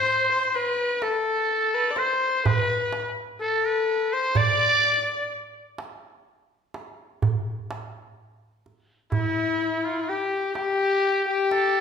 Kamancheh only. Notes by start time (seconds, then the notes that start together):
Already playing: C5
0.31 C5
0.55 B4
1.02 A4
1.74 B4
1.91 D5
1.96 C5
2.46 C5
2.58 B4
3.41 A4
4.13 C5
4.36 D5
9.12 E4
10.09 G4
10.56 G4
11.28 G4